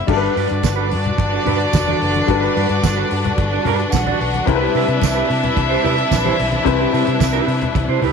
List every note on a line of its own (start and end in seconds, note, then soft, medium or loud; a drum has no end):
0.00 0.10 C4 medium
0.00 0.09 F#4 medium
0.07 0.27 G1 medium
0.07 4.44 D3 medium
0.07 2.24 G3 medium
0.07 8.13 G3 medium
0.07 2.24 D4 medium
0.07 3.89 D4 medium
0.07 8.13 D4 medium
0.07 2.24 F#4 medium
0.07 4.44 F#4 medium
0.07 0.15 A4 medium
0.07 8.13 B4 medium
0.07 3.89 D5 loud
0.07 muted clean electric guitar stroke soft
0.07 kick loud
0.07 crash medium
0.07 muted conga medium
0.17 2.28 B4 medium
0.21 0.35 D4 medium
0.21 0.36 F#4 medium
0.21 0.35 B4 medium
0.36 0.45 G2 loud
0.36 0.46 D4 medium
0.36 0.47 F#4 medium
0.36 0.47 B4 medium
0.36 open hi-hat medium
0.49 0.60 G2 loud
0.49 muted clean electric guitar stroke medium
0.49 closed hi-hat soft
0.63 0.94 G1 loud
0.63 muted clean electric guitar stroke soft
0.63 kick loud
0.63 snare loud
0.63 closed hi-hat medium
0.63 tambourine loud
0.63 high conga medium
0.76 0.89 D4 medium
0.76 0.89 F#4 medium
0.76 0.90 B4 medium
0.90 1.10 G2 loud
0.90 muted clean electric guitar stroke soft
0.90 open hi-hat medium
1.04 muted clean electric guitar stroke soft
1.04 closed hi-hat medium
1.04 low conga medium
1.18 1.37 G1 medium
1.18 muted clean electric guitar stroke soft
1.18 kick loud
1.18 closed hi-hat medium
1.18 muted conga medium
1.32 1.43 D4 medium
1.32 1.43 F#4 medium
1.32 1.42 D5 medium
1.45 1.65 G2 medium
1.45 1.59 D4 medium
1.45 1.58 F#4 medium
1.45 1.58 B4 medium
1.45 open hi-hat medium
1.45 low conga medium
1.59 muted clean electric guitar stroke soft
1.59 closed hi-hat soft
1.73 1.92 F1 medium
1.73 muted clean electric guitar stroke soft
1.73 kick loud
1.73 snare loud
1.73 closed hi-hat medium
1.73 tambourine medium
1.73 high conga medium
1.87 1.99 D4 medium
1.87 2.00 F#4 medium
1.87 2.01 D5 medium
1.87 high conga loud
2.00 2.20 F#1 medium
2.00 muted clean electric guitar stroke soft
2.00 open hi-hat medium
2.14 muted clean electric guitar stroke medium
2.14 closed hi-hat medium
2.14 high conga medium
2.27 2.47 G1 medium
2.27 4.43 G3 medium
2.27 4.43 D4 medium
2.27 4.44 F#4 medium
2.27 4.44 B4 medium
2.27 muted clean electric guitar stroke soft
2.27 kick loud
2.27 closed hi-hat medium
2.27 muted conga medium
2.42 2.55 D4 medium
2.42 2.56 F#4 medium
2.42 2.55 B4 medium
2.56 2.65 G2 loud
2.56 2.66 D4 medium
2.56 2.67 F#4 medium
2.56 2.67 B4 medium
2.56 open hi-hat medium
2.56 muted conga soft
2.68 2.79 G2 loud
2.68 muted clean electric guitar stroke medium
2.68 closed hi-hat medium
2.83 3.02 G1 loud
2.83 muted clean electric guitar stroke soft
2.83 kick loud
2.83 snare loud
2.83 closed hi-hat medium
2.83 tambourine loud
2.83 high conga medium
2.96 3.09 D4 medium
2.96 3.09 F#4 medium
2.96 3.10 B4 medium
3.10 3.29 G2 loud
3.10 muted clean electric guitar stroke soft
3.10 open hi-hat medium
3.24 muted clean electric guitar stroke soft
3.24 closed hi-hat medium
3.24 low conga medium
3.38 3.56 G1 loud
3.38 muted clean electric guitar stroke soft
3.38 kick loud
3.38 closed hi-hat medium
3.38 muted conga medium
3.52 3.63 D4 medium
3.52 3.63 F#4 medium
3.52 3.62 D5 medium
3.65 3.84 G2 loud
3.65 3.85 D4 medium
3.65 3.80 F#4 medium
3.65 3.78 B4 loud
3.65 open hi-hat medium
3.65 low conga medium
3.79 muted clean electric guitar stroke soft
3.79 closed hi-hat soft
3.92 4.11 A#1 medium
3.92 4.46 F#4 medium
3.92 4.46 F#5 medium
3.92 muted clean electric guitar stroke soft
3.92 kick loud
3.92 snare loud
3.92 closed hi-hat medium
3.92 tambourine medium
3.92 high conga medium
4.07 4.19 D4 medium
4.07 4.21 F#4 medium
4.07 4.20 D5 medium
4.07 high conga loud
4.21 4.39 B1 medium
4.21 muted clean electric guitar stroke soft
4.21 open hi-hat medium
4.34 muted clean electric guitar stroke soft
4.34 closed hi-hat soft
4.34 high conga medium
4.46 4.66 C2 loud
4.46 6.61 C3 medium
4.46 8.13 C3 medium
4.46 6.62 C4 medium
4.46 8.13 E4 medium
4.46 6.62 E4 medium
4.46 4.54 A#4 medium
4.46 8.13 E5 loud
4.46 muted clean electric guitar stroke soft
4.46 kick loud
4.46 closed hi-hat medium
4.46 muted conga medium
4.55 6.66 B4 loud
4.61 4.74 E4 medium
4.61 4.75 G4 medium
4.61 4.74 B4 medium
4.75 4.84 C3 loud
4.75 4.85 E4 medium
4.75 4.86 G4 medium
4.75 4.86 B4 loud
4.75 open hi-hat medium
4.75 muted conga soft
4.88 4.97 C3 loud
4.88 muted clean electric guitar stroke medium
4.88 closed hi-hat medium
5.01 5.21 C2 loud
5.01 muted clean electric guitar stroke soft
5.01 kick loud
5.01 snare loud
5.01 closed hi-hat medium
5.01 tambourine loud
5.01 high conga medium
5.15 5.27 E4 medium
5.15 5.28 G4 medium
5.15 5.29 B4 medium
5.28 5.48 C3 loud
5.28 muted clean electric guitar stroke soft
5.28 open hi-hat medium
5.42 muted clean electric guitar stroke medium
5.42 closed hi-hat soft
5.42 low conga medium
5.56 5.75 C2 loud
5.56 muted clean electric guitar stroke soft
5.56 kick loud
5.56 closed hi-hat medium
5.56 muted conga medium
5.69 5.81 E4 medium
5.69 5.81 G4 medium
5.69 5.80 C5 medium
5.83 6.03 C3 medium
5.83 5.97 E4 medium
5.83 5.97 G4 medium
5.83 5.96 B4 loud
5.83 open hi-hat medium
5.83 low conga medium
5.97 muted clean electric guitar stroke soft
5.97 closed hi-hat soft
6.11 6.30 A#1 loud
6.11 muted clean electric guitar stroke medium
6.11 kick loud
6.11 snare loud
6.11 closed hi-hat medium
6.11 tambourine medium
6.11 high conga medium
6.24 6.37 E4 medium
6.24 6.38 G4 medium
6.24 6.38 C5 medium
6.24 high conga loud
6.38 6.58 B1 medium
6.38 muted clean electric guitar stroke soft
6.38 open hi-hat medium
6.52 muted clean electric guitar stroke soft
6.52 closed hi-hat soft
6.52 high conga medium
6.64 6.85 C2 loud
6.64 8.13 C3 medium
6.64 8.13 C4 medium
6.64 8.13 E4 medium
6.64 8.13 B4 medium
6.64 kick loud
6.64 closed hi-hat medium
6.64 muted conga medium
6.79 6.92 E4 medium
6.79 6.92 G4 medium
6.79 6.93 B4 medium
6.93 7.03 C3 loud
6.93 7.04 E4 medium
6.93 7.04 G4 medium
6.93 7.05 B4 medium
6.93 open hi-hat medium
7.06 7.17 C3 loud
7.06 muted clean electric guitar stroke soft
7.06 closed hi-hat medium
7.20 7.39 C2 loud
7.20 kick loud
7.20 snare loud
7.20 closed hi-hat medium
7.20 tambourine loud
7.20 high conga medium
7.33 7.46 E4 medium
7.33 7.47 G4 medium
7.33 7.48 B4 medium
7.47 7.66 C3 loud
7.47 muted clean electric guitar stroke soft
7.47 open hi-hat medium
7.61 muted clean electric guitar stroke soft
7.61 closed hi-hat medium
7.61 low conga medium
7.75 7.85 C2 loud
7.75 muted clean electric guitar stroke soft
7.75 kick loud
7.75 closed hi-hat medium
7.75 muted conga medium
7.88 7.98 C3 loud
7.88 8.00 E4 medium
7.88 8.00 G4 medium
7.88 7.99 C5 medium
8.02 8.11 C2 loud
8.02 8.13 E4 medium
8.02 8.13 G4 medium
8.02 8.13 B4 medium
8.02 open hi-hat medium
8.02 low conga medium